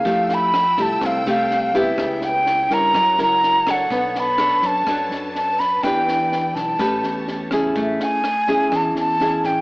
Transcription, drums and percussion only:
0.05 kick, snare
0.29 snare
0.54 cross-stick, snare
0.77 kick, snare
1.01 kick, cross-stick, snare
1.26 snare
1.51 snare
1.74 kick, snare
1.98 kick, cross-stick, snare
2.21 snare
2.46 snare
2.70 kick, snare
2.94 kick, cross-stick, snare
3.19 snare
3.43 snare
3.66 kick, cross-stick, snare
3.90 kick, snare
4.15 snare
4.38 cross-stick, snare
4.62 kick, snare
4.87 kick, cross-stick, snare
5.12 snare
5.36 snare
5.59 kick, snare
5.83 kick, cross-stick, snare
6.08 snare
6.32 snare
6.56 kick, snare
6.79 kick, cross-stick, snare
7.03 snare
7.28 snare
7.51 kick, cross-stick, snare
7.75 kick, snare
8.00 snare
8.24 cross-stick, snare
8.47 kick, snare
8.72 kick, cross-stick, snare
8.96 snare
9.20 snare
9.44 kick, snare

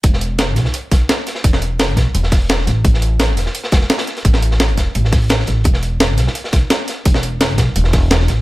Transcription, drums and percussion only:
0.03 kick, closed hi-hat
0.13 snare
0.21 closed hi-hat
0.38 snare, closed hi-hat
0.56 snare, closed hi-hat
0.65 snare
0.74 closed hi-hat
0.91 kick, snare, closed hi-hat
1.09 snare, closed hi-hat
1.27 snare, closed hi-hat
1.35 snare
1.44 kick, closed hi-hat
1.53 snare
1.62 closed hi-hat
1.79 snare, closed hi-hat
1.97 kick, snare, closed hi-hat
2.15 closed hi-hat
2.23 snare
2.32 kick, snare, closed hi-hat, open hi-hat
2.49 snare, closed hi-hat
2.58 snare
2.67 snare, closed hi-hat
2.85 kick, closed hi-hat
2.94 snare
3.02 closed hi-hat
3.19 snare, closed hi-hat
3.37 snare, closed hi-hat
3.46 snare
3.55 closed hi-hat
3.63 snare
3.72 kick, snare, closed hi-hat
3.81 snare
3.90 snare, closed hi-hat
3.98 snare, closed hi-hat
4.07 snare, closed hi-hat
4.16 snare, closed hi-hat
4.25 kick, closed hi-hat
4.33 snare
4.42 closed hi-hat
4.51 snare
4.60 snare, closed hi-hat
4.68 closed hi-hat
4.77 kick, snare, closed hi-hat
4.95 closed hi-hat
5.05 snare
5.12 kick, snare, closed hi-hat, open hi-hat
5.29 snare, closed hi-hat
5.39 snare
5.47 snare, closed hi-hat
5.64 kick, closed hi-hat
5.74 snare
5.83 closed hi-hat
6.00 snare, closed hi-hat
6.17 snare, closed hi-hat
6.27 snare
6.35 closed hi-hat
6.44 snare
6.52 kick, snare, closed hi-hat
6.70 snare, closed hi-hat
6.88 snare, closed hi-hat
7.05 kick, closed hi-hat
7.14 snare
7.23 closed hi-hat
7.41 snare, closed hi-hat
7.49 closed hi-hat
7.58 kick, snare, closed hi-hat
7.76 closed hi-hat
7.84 snare
7.93 kick, snare, closed hi-hat, open hi-hat
8.10 snare, closed hi-hat
8.20 snare
8.28 snare, closed hi-hat

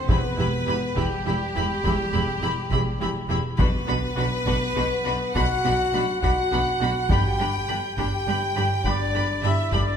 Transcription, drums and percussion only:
0.09 taiko
0.97 taiko
1.85 taiko
2.71 taiko
3.59 taiko
4.46 taiko
5.35 taiko
6.23 taiko
7.10 taiko
7.97 taiko
8.85 taiko
9.72 taiko

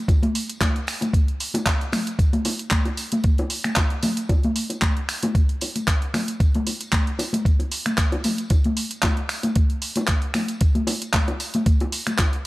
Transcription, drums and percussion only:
0.08 kick, closed hi-hat, tambourine, high bongo
0.23 closed hi-hat, high conga
0.35 open hi-hat, tambourine
0.49 closed hi-hat, tambourine
0.60 kick, clap, closed hi-hat, tambourine, high bongo, high conga
0.76 closed hi-hat
0.87 finger snap, open hi-hat, tambourine
1.01 closed hi-hat, tambourine, high bongo, high conga
1.13 kick, closed hi-hat, tambourine
1.28 closed hi-hat
1.40 open hi-hat, tambourine
1.54 closed hi-hat, tambourine, high bongo, high conga
1.66 kick, clap, closed hi-hat, tambourine
1.81 closed hi-hat
1.92 finger snap, open hi-hat, tambourine, high bongo, high conga, low conga
2.07 closed hi-hat, tambourine
2.19 kick, closed hi-hat, tambourine
2.33 closed hi-hat, high conga
2.45 open hi-hat, tambourine, high bongo
2.59 closed hi-hat, tambourine
2.71 kick, clap, closed hi-hat, tambourine, high conga
2.85 closed hi-hat, high bongo
2.97 open hi-hat, tambourine
3.12 closed hi-hat, tambourine, high conga
3.24 kick, closed hi-hat, tambourine
3.38 closed hi-hat, high bongo
3.50 open hi-hat, tambourine
3.64 finger snap, closed hi-hat, tambourine, high conga
3.76 kick, clap, closed hi-hat, tambourine, high bongo
3.90 closed hi-hat
4.03 open hi-hat, tambourine, high conga, low conga
4.17 closed hi-hat, tambourine
4.29 kick, closed hi-hat, tambourine, high bongo
4.43 closed hi-hat, high conga
4.56 open hi-hat, tambourine
4.70 closed hi-hat, tambourine, high bongo
4.82 kick, clap, closed hi-hat, tambourine, high conga
4.97 closed hi-hat
5.08 finger snap, open hi-hat, tambourine
5.22 closed hi-hat, tambourine, high bongo, high conga
5.35 kick, closed hi-hat, tambourine
5.49 closed hi-hat
5.61 open hi-hat, tambourine, high bongo
5.76 closed hi-hat, tambourine, high conga
5.88 kick, clap, closed hi-hat
6.02 closed hi-hat
6.14 finger snap, open hi-hat, tambourine, high bongo, high conga, low conga
6.28 closed hi-hat, tambourine
6.40 kick, closed hi-hat, tambourine
6.55 closed hi-hat, high conga
6.67 open hi-hat, tambourine, high bongo
6.80 closed hi-hat, tambourine
6.92 kick, clap, closed hi-hat, tambourine, high conga
7.07 closed hi-hat
7.19 open hi-hat, tambourine, high bongo
7.33 closed hi-hat, tambourine, high conga
7.45 kick, closed hi-hat, tambourine
7.59 closed hi-hat, high bongo
7.71 open hi-hat, tambourine
7.86 finger snap, closed hi-hat, tambourine, high conga
7.98 kick, clap, closed hi-hat
8.12 closed hi-hat, high bongo
8.24 open hi-hat, tambourine, high conga, low conga
8.38 closed hi-hat, tambourine
8.50 kick, closed hi-hat, tambourine, high bongo
8.64 closed hi-hat, high conga
8.77 open hi-hat, tambourine
8.91 closed hi-hat, tambourine
9.02 kick, clap, closed hi-hat, tambourine, high bongo, high conga
9.17 closed hi-hat
9.29 finger snap, open hi-hat, tambourine
9.43 closed hi-hat, tambourine, high bongo, high conga
9.56 kick, closed hi-hat, tambourine
9.70 closed hi-hat
9.82 open hi-hat, tambourine
9.96 closed hi-hat, tambourine, high bongo, high conga
10.07 kick, clap, closed hi-hat, tambourine
10.22 closed hi-hat
10.34 finger snap, open hi-hat, tambourine, high bongo, high conga, low conga
10.48 closed hi-hat, tambourine
10.61 kick, closed hi-hat, tambourine
10.75 closed hi-hat, high conga
10.87 open hi-hat, tambourine, high bongo
11.02 closed hi-hat, tambourine
11.13 kick, clap, closed hi-hat, tambourine, high conga
11.28 closed hi-hat, high bongo
11.40 open hi-hat, tambourine
11.54 closed hi-hat, tambourine, high conga
11.66 kick, closed hi-hat, tambourine
11.80 closed hi-hat, high bongo
11.92 open hi-hat, tambourine
12.07 finger snap, closed hi-hat, tambourine, high conga
12.18 kick, clap, closed hi-hat, tambourine, high bongo
12.33 closed hi-hat

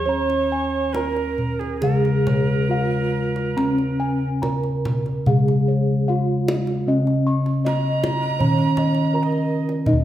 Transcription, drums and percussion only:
0.30 kendang slap
0.94 kendang high
1.16 kendang slap
1.38 kendang low
1.61 kendang slap
1.82 kendang low
2.05 kendang slap
2.27 kendang high, kendang low
3.36 kendang slap
3.58 kendang high
3.78 kendang slap
4.43 kendang high, kendang low
4.64 kendang slap
4.85 kendang high, kendang low
5.06 kendang slap
5.26 kendang low
5.48 kendang slap
6.48 kendang high
6.67 kendang slap
7.07 kendang slap
7.46 kendang slap
7.66 kendang high
8.04 kendang high, kendang low
8.23 kendang slap
8.40 kendang low
8.59 kendang slap
8.77 kendang high, kendang low
8.95 kendang slap
9.32 kendang slap
9.69 kendang slap
9.86 kendang low

